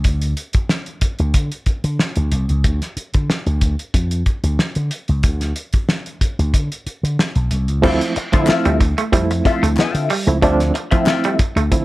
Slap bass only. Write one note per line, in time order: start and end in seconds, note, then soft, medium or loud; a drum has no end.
0.05 0.33 D2 loud
0.55 muted slap bass stroke soft
1.02 muted slap bass stroke soft
1.20 1.33 D2 medium
1.34 1.49 D3 medium
1.67 muted slap bass stroke soft
1.84 1.97 D3 medium
2.17 2.30 D2 medium
2.32 2.47 C2 medium
2.49 2.62 C#2 medium
2.64 2.79 D2 medium
2.97 muted slap bass stroke soft
3.14 3.27 D3 medium
3.29 muted slap bass stroke soft
3.46 3.74 D2 medium
3.94 4.22 F2 medium
4.43 4.57 D2 medium
4.76 4.89 D3 medium
5.09 5.22 C#2 medium
5.24 5.52 D2 loud
5.74 muted slap bass stroke soft
6.21 muted slap bass stroke soft
6.39 6.52 D2 medium
6.54 6.68 D3 loud
6.86 muted slap bass stroke soft
7.03 7.16 D3 medium
7.36 7.49 B1 medium
7.51 7.68 C2 medium
7.68 7.81 C#2 medium
7.84 7.98 D2 loud
8.17 muted slap bass stroke soft
8.34 8.46 D3 loud
8.49 muted slap bass stroke soft
8.66 8.93 D2 medium
9.13 9.41 F2 loud
9.63 9.76 D2 medium
9.95 10.08 D3 medium
10.27 10.42 C#2 medium
10.42 10.70 D2 loud
10.92 muted slap bass stroke soft
11.39 muted slap bass stroke medium
11.56 11.69 D2 medium
11.72 11.85 D3 loud